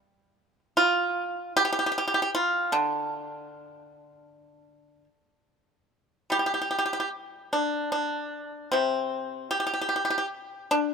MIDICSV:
0, 0, Header, 1, 2, 480
1, 0, Start_track
1, 0, Tempo, 780234
1, 9, Time_signature, 4, 2, 24, 8
1, 2889, Tempo, 819672
1, 4329, Tempo, 789474
1, 6630, End_track
2, 0, Start_track
2, 0, Title_t, "Pipa"
2, 0, Program_c, 0, 105
2, 0, Note_on_c, 0, 55, 66
2, 363, Note_off_c, 0, 55, 0
2, 473, Note_on_c, 0, 65, 93
2, 937, Note_off_c, 0, 65, 0
2, 963, Note_on_c, 0, 67, 104
2, 1008, Note_off_c, 0, 67, 0
2, 1014, Note_on_c, 0, 67, 71
2, 1054, Note_off_c, 0, 67, 0
2, 1061, Note_on_c, 0, 67, 75
2, 1093, Note_off_c, 0, 67, 0
2, 1101, Note_on_c, 0, 67, 62
2, 1139, Note_off_c, 0, 67, 0
2, 1146, Note_on_c, 0, 67, 62
2, 1172, Note_off_c, 0, 67, 0
2, 1179, Note_on_c, 0, 67, 54
2, 1210, Note_off_c, 0, 67, 0
2, 1217, Note_on_c, 0, 67, 73
2, 1270, Note_off_c, 0, 67, 0
2, 1277, Note_on_c, 0, 67, 64
2, 1310, Note_off_c, 0, 67, 0
2, 1318, Note_on_c, 0, 67, 72
2, 1359, Note_off_c, 0, 67, 0
2, 1366, Note_on_c, 0, 67, 67
2, 1412, Note_off_c, 0, 67, 0
2, 1443, Note_on_c, 0, 65, 86
2, 1667, Note_off_c, 0, 65, 0
2, 1675, Note_on_c, 0, 50, 62
2, 1677, Note_on_c, 0, 62, 75
2, 3091, Note_off_c, 0, 62, 0
2, 3114, Note_off_c, 0, 50, 0
2, 3828, Note_on_c, 0, 55, 51
2, 3839, Note_on_c, 0, 67, 80
2, 3875, Note_off_c, 0, 67, 0
2, 3882, Note_on_c, 0, 67, 53
2, 3916, Note_off_c, 0, 67, 0
2, 3923, Note_on_c, 0, 67, 60
2, 3961, Note_off_c, 0, 67, 0
2, 3968, Note_on_c, 0, 67, 52
2, 4006, Note_off_c, 0, 67, 0
2, 4013, Note_on_c, 0, 67, 55
2, 4059, Note_off_c, 0, 67, 0
2, 4066, Note_on_c, 0, 67, 55
2, 4106, Note_off_c, 0, 67, 0
2, 4113, Note_on_c, 0, 67, 63
2, 4147, Note_off_c, 0, 67, 0
2, 4154, Note_on_c, 0, 67, 54
2, 4190, Note_off_c, 0, 67, 0
2, 4197, Note_on_c, 0, 67, 67
2, 4230, Note_off_c, 0, 67, 0
2, 4237, Note_on_c, 0, 67, 61
2, 4286, Note_off_c, 0, 67, 0
2, 4555, Note_on_c, 0, 62, 73
2, 4786, Note_off_c, 0, 62, 0
2, 4793, Note_on_c, 0, 62, 73
2, 5258, Note_off_c, 0, 62, 0
2, 5278, Note_on_c, 0, 60, 74
2, 5283, Note_off_c, 0, 55, 0
2, 5287, Note_on_c, 0, 48, 58
2, 5742, Note_off_c, 0, 60, 0
2, 5759, Note_on_c, 0, 67, 78
2, 5808, Note_off_c, 0, 67, 0
2, 5815, Note_on_c, 0, 67, 54
2, 5848, Note_off_c, 0, 67, 0
2, 5855, Note_on_c, 0, 67, 62
2, 5890, Note_off_c, 0, 67, 0
2, 5898, Note_on_c, 0, 67, 56
2, 5939, Note_off_c, 0, 67, 0
2, 5946, Note_on_c, 0, 67, 63
2, 5983, Note_off_c, 0, 67, 0
2, 5990, Note_on_c, 0, 67, 53
2, 6026, Note_off_c, 0, 67, 0
2, 6034, Note_on_c, 0, 67, 60
2, 6080, Note_off_c, 0, 67, 0
2, 6088, Note_on_c, 0, 67, 58
2, 6115, Note_off_c, 0, 67, 0
2, 6122, Note_on_c, 0, 67, 64
2, 6160, Note_off_c, 0, 67, 0
2, 6167, Note_on_c, 0, 67, 61
2, 6214, Note_off_c, 0, 67, 0
2, 6490, Note_on_c, 0, 62, 89
2, 6630, Note_off_c, 0, 48, 0
2, 6630, Note_off_c, 0, 62, 0
2, 6630, End_track
0, 0, End_of_file